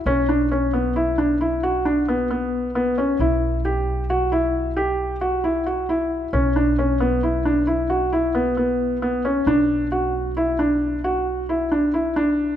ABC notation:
X:1
M:7/4
L:1/8
Q:1/4=134
K:Bm
V:1 name="Felt piano"
C D C B, E D E F D B, B,2 B, C | E2 G2 F E2 G2 F E F E2 | C D C B, E D E F E B, B,2 B, C | D2 F2 E D2 F2 E D E D2 |]
V:2 name="Upright bass" clef=bass
B,,,12- B,,,2 | B,,,12- B,,,2 | B,,,12- B,,,2 | B,,,12- B,,,2 |]